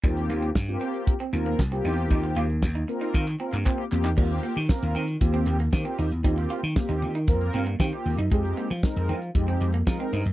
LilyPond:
<<
  \new Staff \with { instrumentName = "Analog polysynth" } { \time 4/4 \key ees \major \tempo 4 = 116 <bes c' f' g'>4 r16 <bes c' f' g'>4 r16 <bes c' f' bes'>8 r16 <bes c' f' g'>8.~ | <bes c' f' g'>8. r8. <bes c' f' bes'>8. r16 <bes c' f' bes'>16 r16 <bes c' f' g'>16 r16 <bes c' f' g'>16 r16 | <bes c' f' ges' g'>8. r16 <bes c' f' bes'>8. r16 <bes c' f' g'>8. r16 <bes c' f' g'>8. r16 | <bes c' f' g'>8. r16 <bes c' f' g'>8. r16 <bes c' f' bes'>8. r16 <bes c' f' g'>8. r16 |
<aes c' ees' g'>8. r16 <aes c' ees' bes'>8. r16 <aes c' ees' g'>8. r16 <aes c' ees' bes'>8. r16 | }
  \new Staff \with { instrumentName = "Clean electric guitar" } { \time 4/4 \key ees \major g16 r16 bes16 r8. c'16 r8 c'16 r16 bes16 r16 c'16 ees'16 r16 | ees'16 r16 f'16 r8 ees'16 r16 ees'16 r8 c'16 bes16 c'16 r8 ees'16 | g16 r16 bes16 r8. c'16 r8 c'16 r16 bes16 r16 c'16 ees'16 r16 | ees'16 r16 f'16 r8 ees'16 r16 ees'16 r8 c'16 bes16 c'16 r8 ees'16 |
aes16 r16 bes16 r8. c'16 r8 c'16 r16 bes16 r16 c'16 ees'16 r16 | }
  \new Staff \with { instrumentName = "Slap bass" } { \clef bass \time 4/4 \key ees \major ees,8 ees,8 g,8 r4 ees,8 c,8 fes,8 | ees,8 ees,8 ees,8 r8 ees8 r16 g,16 r8 fes,8 | ees,8 r16 ees16 r16 ees,16 ees8 ees,8 ees,8 ees16 r16 ees,16 fes,16 | ees,8 r16 ees16 r16 ees,16 ees8 f,8 g,8 ees16 r16 ees,16 ges,16 |
f,8 r16 f16 r16 f,16 f8 f,8 f,8 f16 r16 g,16 ges,16 | }
  \new DrumStaff \with { instrumentName = "Drums" } \drummode { \time 4/4 <hh bd>16 hh16 hh16 hh16 <bd sn>16 hh16 hh16 hh16 <hh bd>16 hh16 hh16 hh16 <bd sn>16 hh16 hh16 hh16 | <hh bd>16 hh16 hh16 hh16 <bd sn>16 hh16 hh16 hh16 <hc bd>16 hc8 hc16 <hc bd>8 hc16 hc16 | <cymc bd>16 hh16 hh16 hh16 <bd sn>16 hh16 hh16 hh16 <hh bd>16 hh16 hh16 hh16 <bd sn>16 hh16 hho16 hh16 | <hh bd>16 hh16 hh16 hh16 <bd sn>16 hh16 hh16 hh16 <hh bd>16 hh16 hh16 hh16 <bd sn>16 hh16 hho16 hh16 |
<hh bd>16 hh16 hh16 hh16 <bd sn>16 hh16 hh16 hh16 <hh bd>16 hh16 hh16 hh16 <bd sn>16 hh16 hho16 hh16 | }
>>